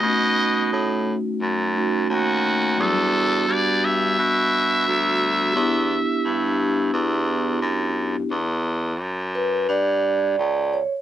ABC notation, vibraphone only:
X:1
M:4/4
L:1/8
Q:"Swing 16ths" 1/4=87
K:Edor
V:1 name="Vibraphone"
[A,C^DF]4- [A,CDF] [A,CDF]3 | [F,G,B,DF]8 | [B,DEG]8 | z3 B d3 c |]